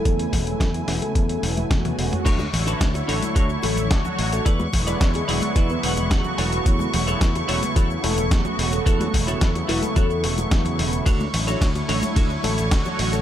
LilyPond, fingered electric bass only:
\new Staff \with { instrumentName = "Fingered electric bass" } { \clef bass \time 4/4 \key a \major \tempo 4 = 109 e,8 e,,8 e,8 e,,8 e,8 e,,8 e,8 e,,8 | d,8 a,,8 d,8 a,,8 d,8 a,,8 d,8 a,,8 | e,8 e,,8 e,8 e,,8 e,8 e,,8 e,8 e,,8 | e,8 e,,8 e,8 e,,8 e,8 e,,8 e,8 e,,8 |
e,8 e,,8 e,8 e,,8 e,8 e,,8 e,8 e,,8 | d,8 a,,8 d,8 a,,8 d,8 a,,8 d,8 a,,8 | }